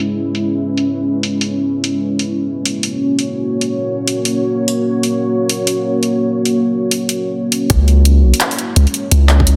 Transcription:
0.00 1.98 G#3 medium
0.00 7.66 C#4 medium
0.00 1.98 E4 medium
0.00 1.98 B4 medium
0.35 open hi-hat soft
0.77 open hi-hat soft
1.23 open hi-hat medium
1.41 open hi-hat medium
1.84 open hi-hat medium
2.01 7.66 A#3 medium
2.01 7.65 F#4 medium
2.01 7.66 C#5 medium
2.19 open hi-hat soft
2.66 open hi-hat medium
2.83 open hi-hat medium
3.19 open hi-hat soft
3.61 open hi-hat soft
4.08 open hi-hat medium
4.25 open hi-hat medium
4.68 open hi-hat medium
5.03 open hi-hat soft
5.49 open hi-hat medium
5.67 open hi-hat medium
6.03 open hi-hat soft
6.45 open hi-hat soft
6.91 open hi-hat medium
7.09 open hi-hat medium
7.52 open hi-hat medium
7.69 8.25 C#2 loud
7.69 9.56 G#3 medium
7.69 9.56 C#4 medium
7.69 9.56 E4 medium
7.69 9.56 C#5 medium
7.69 kick loud
7.69 closed hi-hat medium
7.88 open hi-hat soft
8.05 closed hi-hat medium
8.23 8.33 B1 medium
8.34 open hi-hat medium
8.40 clap loud
8.40 closed hi-hat medium
8.51 open hi-hat medium
8.59 closed hi-hat soft
8.76 8.86 C#2 medium
8.76 closed hi-hat medium
8.87 open hi-hat soft
8.94 closed hi-hat soft
9.11 9.56 C#2 loud
9.11 closed hi-hat medium
9.29 clap medium
9.29 open hi-hat soft
9.40 kick medium
9.47 closed hi-hat medium

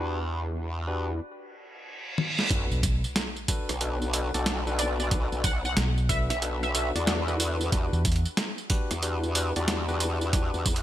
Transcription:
0.00 1.20 E2 medium
0.00 0.19 D4 medium
0.00 0.19 F#4 medium
0.00 0.19 G4 medium
0.00 0.19 B4 medium
0.87 1.09 D4 medium
0.87 1.09 F#4 medium
0.87 1.09 G4 medium
0.87 1.09 B4 loud
1.20 reverse cymbal medium
2.18 high tom medium
2.39 snare medium
2.50 2.68 B1 medium
2.50 2.79 D4 medium
2.50 2.79 F#4 medium
2.50 2.79 A4 medium
2.50 2.79 B4 medium
2.50 kick loud
2.50 closed hi-hat medium
2.50 tambourine soft
2.50 sub drop medium
2.71 3.01 B1 medium
2.71 tambourine soft
2.83 kick loud
2.83 closed hi-hat medium
2.83 tambourine medium
3.04 tambourine soft
3.16 snare loud
3.16 closed hi-hat medium
3.16 tambourine soft
3.36 tambourine soft
3.48 3.70 D4 medium
3.48 3.70 F#4 medium
3.48 3.70 A4 medium
3.48 3.70 B4 loud
3.48 kick loud
3.48 closed hi-hat medium
3.48 tambourine medium
3.69 4.31 B1 loud
3.69 cross-stick soft
3.69 closed hi-hat medium
3.69 tambourine soft
3.81 4.10 D4 medium
3.81 4.10 F#4 medium
3.81 4.10 A4 medium
3.81 4.10 B4 medium
3.81 closed hi-hat medium
3.81 tambourine soft
4.02 tambourine soft
4.13 4.31 D4 medium
4.13 4.31 F#4 medium
4.13 4.31 A4 medium
4.13 4.31 B4 medium
4.13 closed hi-hat medium
4.13 tambourine medium
4.34 5.29 B1 loud
4.34 4.61 D4 medium
4.34 4.61 F#4 medium
4.34 4.61 A4 medium
4.34 4.61 D5 loud
4.34 closed hi-hat soft
4.34 tambourine soft
4.46 snare loud
4.46 closed hi-hat medium
4.46 tambourine soft
4.67 5.08 D4 medium
4.67 5.08 F#4 medium
4.67 5.09 A4 medium
4.67 5.08 B4 loud
4.67 tambourine soft
4.79 4.92 D5 medium
4.79 closed hi-hat medium
4.79 tambourine medium
5.00 5.07 D5 medium
5.00 tambourine soft
5.11 5.40 D4 medium
5.11 5.40 F#4 medium
5.11 5.40 A4 medium
5.11 5.40 B4 medium
5.11 kick loud
5.11 closed hi-hat medium
5.11 tambourine soft
5.32 5.75 B1 loud
5.32 tambourine soft
5.44 5.57 F#5 medium
5.44 kick loud
5.44 closed hi-hat medium
5.44 tambourine medium
5.65 5.72 F#5 medium
5.65 tambourine soft
5.77 6.27 B1 loud
5.77 snare loud
5.77 closed hi-hat medium
5.77 tambourine soft
5.98 tambourine soft
6.09 6.31 D4 medium
6.09 6.31 F#4 medium
6.09 6.31 A4 medium
6.09 6.31 B4 loud
6.09 6.22 E5 medium
6.09 kick loud
6.09 closed hi-hat medium
6.09 tambourine medium
6.30 6.92 B1 medium
6.30 6.37 E5 medium
6.30 cross-stick soft
6.30 closed hi-hat medium
6.30 tambourine soft
6.42 6.71 D4 medium
6.42 6.71 F#4 medium
6.42 6.71 A4 medium
6.42 6.71 B4 medium
6.42 closed hi-hat medium
6.42 tambourine soft
6.63 6.70 E5 medium
6.63 tambourine soft
6.75 6.92 D4 medium
6.75 6.92 F#4 medium
6.75 6.92 A4 medium
6.75 6.92 B4 medium
6.75 6.88 E5 medium
6.75 closed hi-hat medium
6.75 tambourine medium
6.95 7.70 E2 loud
6.95 7.22 D4 medium
6.95 7.22 F#4 medium
6.95 7.22 A4 medium
6.95 7.22 D5 loud
6.95 closed hi-hat soft
6.95 tambourine soft
7.07 snare loud
7.07 closed hi-hat medium
7.07 tambourine soft
7.28 7.69 D4 loud
7.28 7.70 F#4 medium
7.28 7.70 A4 medium
7.28 7.70 B4 loud
7.28 tambourine soft
7.40 closed hi-hat medium
7.40 tambourine medium
7.61 tambourine soft
7.72 7.90 E2 loud
7.72 8.01 D4 medium
7.72 8.01 F#4 medium
7.72 8.01 G4 medium
7.72 8.01 B4 medium
7.72 kick loud
7.72 closed hi-hat medium
7.72 tambourine soft
7.93 8.22 E2 loud
7.93 tambourine soft
8.05 kick loud
8.05 closed hi-hat medium
8.05 tambourine medium
8.12 closed hi-hat medium
8.16 closed hi-hat soft
8.25 tambourine soft
8.37 snare loud
8.37 closed hi-hat medium
8.37 tambourine soft
8.58 tambourine soft
8.70 8.92 D4 medium
8.70 8.92 F#4 medium
8.70 8.92 G4 medium
8.70 8.92 B4 loud
8.70 kick loud
8.70 closed hi-hat medium
8.70 tambourine medium
8.91 9.53 E2 loud
8.91 cross-stick soft
8.91 closed hi-hat medium
8.91 tambourine soft
9.03 9.32 D4 medium
9.03 9.32 F#4 medium
9.03 9.32 G4 medium
9.03 9.32 B4 medium
9.03 closed hi-hat medium
9.03 tambourine soft
9.23 tambourine soft
9.35 9.53 D4 medium
9.35 9.53 F#4 medium
9.35 9.53 G4 medium
9.35 9.53 B4 medium
9.35 closed hi-hat medium
9.35 tambourine medium
9.56 10.51 E2 loud
9.56 9.82 D4 medium
9.56 9.82 F#4 medium
9.56 9.82 G4 medium
9.56 9.82 D5 loud
9.56 closed hi-hat soft
9.56 tambourine soft
9.68 snare loud
9.68 closed hi-hat medium
9.68 tambourine soft
9.88 10.30 D4 loud
9.88 10.30 F#4 medium
9.88 10.30 G4 medium
9.88 10.30 B4 loud
9.88 tambourine soft
10.00 closed hi-hat medium
10.00 tambourine medium
10.21 tambourine soft
10.33 10.62 D4 medium
10.33 10.62 F#4 medium
10.33 10.62 G4 medium
10.33 10.62 B4 loud
10.33 kick loud
10.33 closed hi-hat medium
10.33 tambourine soft
10.54 10.83 E2 loud
10.54 tambourine soft
10.66 kick loud
10.66 tambourine medium
10.76 closed hi-hat medium

